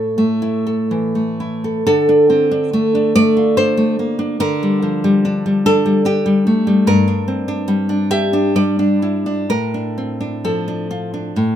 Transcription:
Already playing: A2 A3 E4 A4 C#5
0.18 A3
0.42 E4
0.67 A4
0.91 E3
1.15 A3
1.40 E4
1.64 A4
1.87 D3 A4
2.09 D4
2.30 C4
2.51 D4
2.73 A3
2.95 D4
3.15 A3 D5
3.37 F4
3.57 D4 C5
3.77 A3
3.99 A#3
4.19 D4
4.40 D3 A#4
4.63 G3
4.82 F3
5.04 G3
5.25 D4
5.46 G3
5.66 D4 A4
5.86 G3
6.05 D4 G4
6.26 G3
6.47 A3
6.67 G3
6.87 G2 A#4
7.08 D4
7.28 C4
7.48 D4
7.68 G3
7.89 D4
8.11 G4 E5
8.33 D4
8.56 G3 D5
8.79 D4
9.02 E4
9.26 D4
9.50 A2 A#4
9.74 D4
9.98 C4
10.21 D4
10.44 F3 A4
10.68 D4
10.91 F4
11.14 D4
11.36 A2

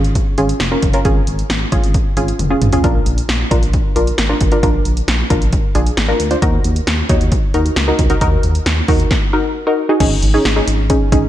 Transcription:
Already playing: G#1 C#4 F4 G#4
0.04 closed hi-hat
0.15 kick, closed hi-hat
0.38 G#1 C#4 F4 G#4, closed hi-hat
0.49 closed hi-hat
0.60 F1, snare, closed hi-hat
0.72 C#4 F4 A#4
0.83 F#1, kick, closed hi-hat
0.93 C#4 F4 A#4, closed hi-hat
1.05 G#1 C#4 F4 G#4, kick, closed hi-hat
1.27 G#1, closed hi-hat
1.39 closed hi-hat
1.50 G#1, snare, closed hi-hat
1.72 G#1 C#4 F4 G#4, kick, closed hi-hat
1.84 closed hi-hat
1.94 kick, closed hi-hat
2.17 G#1 C#4 F4 G#4, closed hi-hat
2.28 closed hi-hat
2.39 F1, closed hi-hat, high tom
2.50 C#4 F4 G#4
2.62 G#1, closed hi-hat, mid tom
2.73 C#4 F4 G#4, closed hi-hat, floor tom
2.84 A#1 D4 F4 A#4, kick, closed hi-hat
3.06 A#1, closed hi-hat
3.18 closed hi-hat
3.29 A#1, snare, closed hi-hat
3.51 A#1 D4 F4 A#4, kick, closed hi-hat
3.63 closed hi-hat
3.73 kick, closed hi-hat
3.96 A#1 D4 F4 A#4, closed hi-hat
4.07 closed hi-hat
4.18 G#1, snare, closed hi-hat
4.29 D4 F4 A#4
4.41 G#1, kick, closed hi-hat
4.52 D4 F4 A#4, closed hi-hat
4.63 A#1 D4 F4 A#4, kick, closed hi-hat
4.85 A#1, closed hi-hat
4.97 closed hi-hat
5.08 A#1, snare, closed hi-hat
5.30 A#1 D4 F4 A#4, kick, closed hi-hat
5.42 closed hi-hat
5.53 kick, closed hi-hat
5.75 A#1 D4 F4 G#4, closed hi-hat
5.87 closed hi-hat
5.97 G#1, snare, closed hi-hat
6.08 D4 F4 A#4
6.20 D2, closed hi-hat
6.31 D4 F4 C5, closed hi-hat
6.42 D#2 D#4 F#4 A#4, kick, closed hi-hat
6.64 D#2, closed hi-hat
6.76 closed hi-hat
6.87 D#2, snare, closed hi-hat
7.09 D#2 D#4 F#4 C#5, kick, closed hi-hat
7.21 closed hi-hat
7.32 kick, closed hi-hat
7.54 D#2 D#4 F#4 A#4, closed hi-hat
7.66 closed hi-hat
7.76 C#2, snare, closed hi-hat
7.88 D#4 F#4 A#4
7.99 C#2, kick, closed hi-hat
8.10 D#4 F#4 A#4, closed hi-hat
8.21 D#2 D#4 F#4 A#4, kick, closed hi-hat
8.43 D#2, closed hi-hat
8.55 closed hi-hat
8.66 D#2, snare, closed hi-hat
8.88 D#2 D#4 F#4 A#4, kick, open hi-hat
9.00 closed hi-hat
9.11 kick, snare
9.33 D#4 F#4 A#4
9.67 D#4 F#4 A#4
9.89 D#4 F#4 G#4
10.00 G#1 C#4 D#4 G#4, kick, closed hi-hat, crash
10.22 G#1, closed hi-hat
10.34 C#4 D#4 G#4
10.45 G#1, snare, closed hi-hat
10.56 C#4 D#4 G#4
10.68 G#1, closed hi-hat
10.90 C#4 D#4 G#4, kick, closed hi-hat
11.12 G#1 C#4 D#4 G#4, kick, closed hi-hat

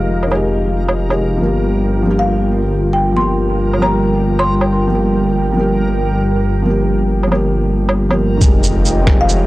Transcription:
Already playing: F1 D#3 G#3 F4 G4 A#4 D#5 F5
0.23 low woodblock
0.27 D#3 G#3
0.32 G4, low woodblock
0.88 low woodblock
1.08 D#3 G#3 G4, low woodblock
1.37 F3 G3 A#4 G5
1.41 G1 A#3
1.45 G4
2.02 F3
2.07 A#3 G4
2.19 F5
2.93 G5
3.12 F3
3.16 A#3 C6
3.20 G4
3.73 low woodblock
3.78 F3 A#3
3.82 G4 A#5, low woodblock
4.39 C6, low woodblock
4.61 low woodblock
4.87 F3 A#3
4.95 G4
5.53 F3
5.57 A#3 G4
6.62 F3 A#3
6.70 G4
7.23 low woodblock
7.27 F3
7.32 A#3 G4, low woodblock
7.89 low woodblock
8.09 F3 A#3 G4, low woodblock
8.37 D#3 G#3 F4 D#5 G5, shaker
8.41 F1 G4, kick, impact
8.63 shaker
8.85 shaker
9.03 D#3, snare
9.07 G#3 G4, kick
9.21 F5
9.29 shaker

